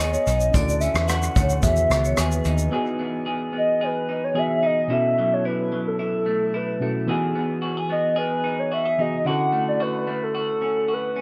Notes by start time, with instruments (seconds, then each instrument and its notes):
Already playing: picked electric bass D#2, reed electric piano B3 D#4 F#4 G#4, clean electric guitar B3 D#4
0.00 clean electric guitar G#4, vibraphone C#5, soft synth lead D#5
0.14 shaker
0.27 picked electric bass B1, clean electric guitar D#4, closed hi-hat, shaker
0.40 shaker
0.52 picked electric bass D2, clean electric guitar D3, reed electric piano C#4 E4 F#4, soft synth lead D5, vibraphone D5, kick, closed hi-hat, shaker
0.56 reed electric piano A4
0.69 shaker
0.80 clean electric guitar C#4, soft synth lead E5, closed hi-hat, shaker
0.95 picked electric bass E2, vibraphone B4, cross-stick, shaker
1.08 clean electric guitar F#4, soft synth lead F#5, cross-stick, closed hi-hat, shaker
1.23 shaker
1.36 picked electric bass D2, clean electric guitar A3, vibraphone C#5, kick, closed hi-hat, shaker
1.49 shaker
1.61 picked electric bass E2, reed electric piano D#3 B3 F#4, clean electric guitar E3, soft synth lead E5, kick, closed hi-hat, shaker
1.66 reed electric piano G#4
1.76 vibraphone B4, shaker
1.90 picked electric bass C#2, clean electric guitar B3, cross-stick, closed hi-hat, shaker
2.05 vibraphone C#5, shaker
2.17 picked electric bass D#2, clean electric guitar G#4, vibraphone B4, cross-stick, closed hi-hat, shaker
2.32 shaker
2.45 picked electric bass D#2, clean electric guitar D#4, closed hi-hat, shaker
2.58 shaker
2.70 reed electric piano E3 B3 D#4 F#4, clean electric guitar E3 G#4
2.76 reed electric piano G#4
2.99 clean electric guitar B3
3.26 clean electric guitar G#4
3.53 clean electric guitar B3
3.57 soft synth lead D#5
3.81 clean electric guitar G#4, soft synth lead B4
4.09 clean electric guitar D#4
4.24 soft synth lead C#5
4.34 reed electric piano E3 B3 D#4 F#4 G#4, clean electric guitar G#4
4.39 soft synth lead E5
4.63 clean electric guitar D#4, soft synth lead D#5
4.88 reed electric piano B2 C#4 E4 F#4, clean electric guitar B2 E4
4.92 reed electric piano A4, soft synth lead E5
5.19 clean electric guitar F#3
5.33 soft synth lead C#5
5.45 clean electric guitar E4, soft synth lead B4
5.72 clean electric guitar F#3
5.88 soft synth lead A4
5.99 clean electric guitar E4, soft synth lead A4
6.26 clean electric guitar A3
6.54 clean electric guitar E4, soft synth lead B4
6.80 reed electric piano B2 C#4 E4 F#4 A4, clean electric guitar A3
7.07 reed electric piano E3 B3 D#4 F#4, clean electric guitar E3 G#4
7.11 reed electric piano G#4
7.35 clean electric guitar B3
7.62 clean electric guitar F#4
7.77 clean electric guitar G#4
7.90 clean electric guitar B3, soft synth lead D#5
8.16 clean electric guitar G#4, soft synth lead B4
8.44 clean electric guitar D#4
8.59 soft synth lead C#5
8.72 clean electric guitar F#4, soft synth lead E5
8.85 clean electric guitar G#4
8.98 reed electric piano E3 B3 D#4 F#4 G#4, clean electric guitar D#4, soft synth lead D#5
9.25 reed electric piano D3 C#4 E4 F#4, clean electric guitar D3 F#4, soft synth lead F#5
9.30 reed electric piano A4
9.53 clean electric guitar A3
9.69 soft synth lead D5
9.80 clean electric guitar F#4, soft synth lead B4
10.07 clean electric guitar A3
10.23 soft synth lead A4
10.35 clean electric guitar F#4, soft synth lead A4
10.62 clean electric guitar C#4
10.88 clean electric guitar F#4
10.93 soft synth lead B4
11.16 clean electric guitar C#4